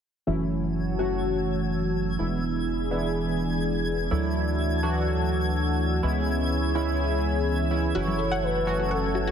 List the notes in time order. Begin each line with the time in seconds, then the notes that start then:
0.27 F#1 E3 F#3 A3 C#4 E4 F#4 C#5 A5 E6 G#6
0.99 E3 F#3 A3 C#4 F#4
2.19 E1 E3 G#3 B3 D4 E4 G#4 D5 B5
2.91 E3 G#3 B3 D4 E4
4.11 D2 E3 F#3 A3 D4 E4 F#4 A5 E6
4.83 E3 F#3 A3 D4 F#4
6.03 C#2 E3 G#3 B3 C#4 E4 G#4 C#5 B5
6.75 E3 G#3 B3 C#4 E4
7.71 E3 G#3 B3 C#4 E4
7.95 F#1 E3 F#3 A3 C#4 E4 F#4 C#5 A5
8.07 F#3
8.19 A4
8.32 F#5
8.43 B4
8.67 E3 F#3 A3 C#4 F#4
8.80 F#4
8.91 A4 F#5
9.15 F#4
9.28 F#4